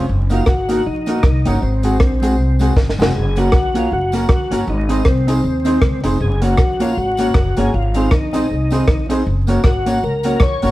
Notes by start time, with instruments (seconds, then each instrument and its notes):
0.09 upright bass F#1
0.30 clean electric guitar A#3 D#4 F#4, upright piano D#4 F#4 A#4, tonewheel organ F4, closed hi-hat, tambourine
0.46 upright bass G#1, tonewheel organ F#4, kick, cross-stick
0.69 clean electric guitar A#3 D#4 F#4, upright piano D#4 F#4 A#4, closed hi-hat, tambourine
0.86 upright bass A#1, tonewheel organ D#4
1.06 clean electric guitar A#3 D#4 F#4, upright piano D#4 F#4 A#4, closed hi-hat, tambourine
1.23 upright bass C2, kick, cross-stick
1.45 upright bass G1, clean electric guitar A#3 D#4 F#4, tonewheel organ C#4, upright piano D#4 F#4 A#4, closed hi-hat, tambourine
1.62 upright bass G#1, tonewheel organ C4
1.83 clean electric guitar G#3 C4 F#4, upright piano C4 F#4 G#4, closed hi-hat, tambourine
2.00 upright bass A#1, kick, cross-stick
2.22 clean electric guitar G#3 C4 F#4, upright piano C4 F#4 G#4, closed hi-hat, tambourine
2.39 upright bass C2
2.59 clean electric guitar G#3 C4 F#4, upright piano C4 F#4 G#4, closed hi-hat, tambourine
2.77 upright bass G#1, kick, snare
2.90 snare
2.98 upright bass F1, clean electric guitar G#3 C4 F#4, upright piano C4 F#4 G#4, snare, tambourine
3.15 upright bass F#1, tonewheel organ G#4
3.36 clean electric guitar A#3 C#4 F#4, upright piano C#4 F#4 A#4, tonewheel organ F#4, closed hi-hat, tambourine
3.52 upright bass A#1, kick, cross-stick
3.74 clean electric guitar A#3 C#4 F#4, upright piano C#4 F#4 A#4, tonewheel organ F4, closed hi-hat, tambourine
3.92 upright bass F#1, upright piano F#4 A#4, tonewheel organ F#4
4.12 clean electric guitar A#3 C#4 F#4, upright piano C#4 F#4 A#4, closed hi-hat, tambourine
4.29 upright bass A#1, kick, cross-stick
4.51 upright bass G1, clean electric guitar A#3 C#4 F#4, upright piano C#4 F#4 A#4, tonewheel organ F#4, closed hi-hat, tambourine
4.67 upright bass G#1, tonewheel organ D#4
4.89 clean electric guitar C4 D#4 G#4, upright piano D#4 G#4 C5, closed hi-hat, tambourine
5.05 upright bass C2, tonewheel organ C4, kick, cross-stick
5.27 clean electric guitar C4 D#4 G#4, upright piano D#4 G#4 C5, closed hi-hat, tambourine
5.44 upright bass D#2, upright piano G#4 C5
5.65 clean electric guitar C4 D#4 G#4, upright piano D#4 G#4 C5, closed hi-hat, tambourine
5.82 upright bass C#2, kick, cross-stick
6.04 upright bass F1, clean electric guitar C4 D#4 G#4, upright piano D#4 G#4 C5, closed hi-hat, tambourine
6.20 upright bass F#1, tonewheel organ G#4
6.41 clean electric guitar A#3 C#4 F#4, upright piano F#4 A#4 C#5, tonewheel organ F#4, closed hi-hat, tambourine
6.57 upright bass A#1, kick, cross-stick
6.80 clean electric guitar A#3 C#4 F#4, tonewheel organ F4, upright piano F#4 A#4 C#5, closed hi-hat, tambourine
6.97 upright bass G#1, tonewheel organ F#4, upright piano A#4 C#5
7.17 clean electric guitar A#3 C#4 F#4, upright piano F#4 A#4 C#5, closed hi-hat, tambourine
7.34 upright bass F#1, kick, cross-stick
7.57 upright bass G1, clean electric guitar A#3 C#4 F#4, upright piano F#4 A#4 C#5, tonewheel organ G#4, closed hi-hat, tambourine
7.74 upright bass G#1, tonewheel organ F4
7.94 clean electric guitar C4 D#4 G#4, upright piano D#4 G#4 C5, closed hi-hat, tambourine
8.11 upright bass A#1, tonewheel organ D#4, kick, cross-stick
8.33 clean electric guitar C4 D#4 G#4, upright piano D#4 G#4 C5, closed hi-hat, tambourine
8.50 upright bass C2, upright piano G#4 C5
8.70 clean electric guitar C4 D#4 G#4, upright piano D#4 G#4 C5, closed hi-hat, tambourine
8.88 upright bass A#1, kick, cross-stick
9.09 clean electric guitar C4 D#4 G#4, upright piano D#4 G#4 C5, closed hi-hat, tambourine
9.27 upright bass F#1
9.47 clean electric guitar A#3 C#4 F#4, upright piano F#4 A#4 C#5, closed hi-hat, tambourine
9.64 upright bass G#1, tonewheel organ F#4, kick, cross-stick
9.86 clean electric guitar A#3 C#4 F#4, upright piano F#4 A#4 C#5, closed hi-hat, tambourine
10.03 upright bass C#2, upright piano A#4 C#5, tonewheel organ A#4
10.23 clean electric guitar A#3 C#4 F#4, upright piano F#4 A#4 C#5, closed hi-hat, tambourine
10.40 upright bass A#1, tonewheel organ C#5, kick, cross-stick
10.62 upright bass G1, clean electric guitar A#3 C#4 F#4, upright piano F#4 A#4 C#5, open hi-hat, tambourine